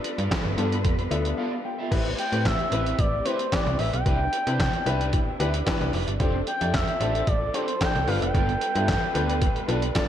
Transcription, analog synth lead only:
2.19 G5
2.45 E5
2.99 D5
3.25 C5
3.52 D5
3.78 E5
3.93 G5
6.48 G5
6.74 E5
7.28 D5
7.54 C5
7.81 G5
8.08 F5
8.22 G5

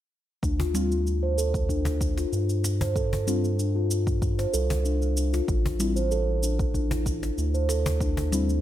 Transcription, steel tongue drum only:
0.43 D4
0.60 F4
1.23 C5
1.38 A4
1.69 D4
2.01 D4
2.18 F4
2.81 C5
2.96 A4
3.27 D4
3.59 D4
3.75 F4
4.39 C5
4.53 A4
4.85 D4
5.17 D4
5.33 F4
5.96 C5
6.11 A4
6.43 D4
6.75 D4
6.91 E4
7.54 C5
7.69 A4
8.01 D4
8.32 D4
8.49 E4

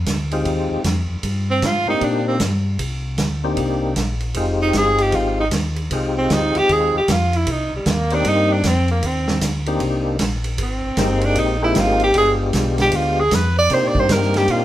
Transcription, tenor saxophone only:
1.51 C4
1.66 F4
1.89 D#4
2.04 D4
2.28 C4
4.62 D#4
4.77 G#4
5.01 G4
5.15 F4
5.40 D#4
6.18 C4
6.33 D#4
6.57 G4
6.72 G#4
6.97 G4
7.11 F4
7.36 E4
7.51 D#4
7.76 G3
7.91 A#3
8.14 D4
8.29 D#4
8.53 D4
8.67 C4
8.91 A#3
9.07 C4
10.62 C4
11.25 D4
11.39 D#4
11.64 E4
11.79 F4
12.03 G4
12.18 G#4
12.81 G4
12.96 F4
13.20 G#4
13.34 B4
13.59 D5
13.74 C5
13.87 D5
14.00 C5
14.12 A#4
14.37 G4
14.51 F4

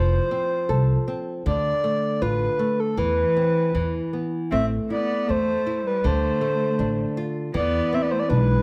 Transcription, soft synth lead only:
Already playing: C5
1.47 D5
2.22 B4
2.80 A4
2.98 B4
4.51 E5
4.91 D5
5.30 C5
5.87 B4
6.07 C5
7.56 D5
7.94 E5
8.02 D5
8.11 C5
8.19 D5
8.29 B4

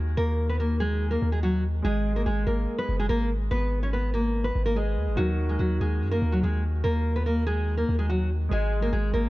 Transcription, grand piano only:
Already playing: D#3 D#4 F#4 A#4
1.82 G#3 G#4
1.87 D#5
4.75 G#3 G#4 B4 D#5
5.16 D#3 D#4 F#4
5.20 A#4
8.49 G#3 G#4
8.53 D#5

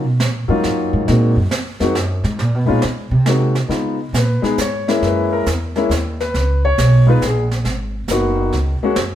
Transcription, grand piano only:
0.48 F#3 A#3 C#4 D#4 F4
1.07 G#3 A#3 C4 D#4 F#4
1.80 G#3 A#3 C4 D#4 F#4
2.66 G#3 B3 C#4 D#4 F4
3.26 G#3 A#3 C4 D#4 F#4
3.68 G#3 B3 D#4 F4
4.18 B4
4.42 G#3 B3 D#4 G#4
4.61 C#5
4.88 G#3 A#3 C#4 E4
5.07 B4
5.33 A#4
5.76 G#3 A#3 C#4 E4
6.21 B4
6.65 C#5
7.07 G#3 B3 D#4 F4 B4
7.25 G#4
8.10 A#3 B3 D#4 F#4
8.83 G#3 A#3 C#4 F#4

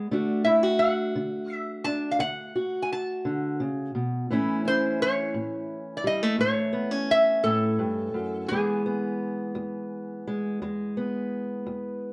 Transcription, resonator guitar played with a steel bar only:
0.45 E5
0.79 F#5
1.54 E5
1.84 A5
2.11 F5
2.20 F#5
2.82 G#5
2.93 A5
4.68 C5
5.02 C#5
5.97 D5
6.07 D#5
6.41 C#5
7.11 E5
7.44 A4
8.48 G#4

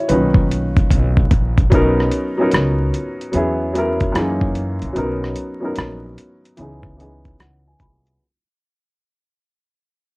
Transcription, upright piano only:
Already playing: D#3 A#3 C#4 E4 F#4 C#5 D#5
0.09 A#2 D#3 C#4 D#4 B4
1.70 F#3 B3 C#4 D#4
1.75 A#4
2.37 F#3 B3 C#4 D#4
2.42 A#4
3.32 F#3 B3 C#4 E4
3.36 G#4
3.73 F#3 B3 C#4 E4
3.78 A#4
4.12 F#2 E3 A#3 C#4
4.16 D#4 G#4
4.93 F#3 B3 C#4 D#4
4.98 A#4
5.60 F#3 B3 C#4 D#4
5.65 A#4
6.57 E3 B3 C#4 D#4
6.62 G#4
6.97 E3 B3 C#4 D#4 D#5
7.02 G#4
7.40 F#5
7.68 G#5
7.80 B5

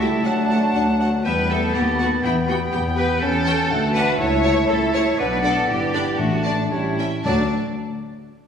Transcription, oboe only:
Already playing: E5
0.27 F#5
1.25 G5
1.73 A5
2.23 G5
3.70 F#5
4.18 E5
5.18 D5
6.70 C#5
7.25 D5

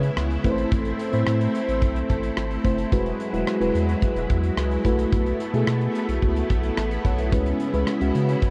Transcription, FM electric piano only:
Already playing: G#3 C#4 E4 B4
0.44 A3 C4 E4 B4
0.51 C5
1.12 A3 C4 E4 C5
2.64 A3 C4 E4 C5
2.92 G#3 E4 F#4 B4
3.33 G#3 E4 F#4 B4
3.60 G#3 E4 F#4 B4
4.85 A3 E4 F#4 B4
5.53 A3 E4 F#4 G#4
6.77 E5 A5
7.05 C#5 F#5
7.19 B4 E5
7.32 G#3 C#4 E4 B4
7.73 G#3 C#4 E4 B4
8.00 G#3 C#4 E4 F#4

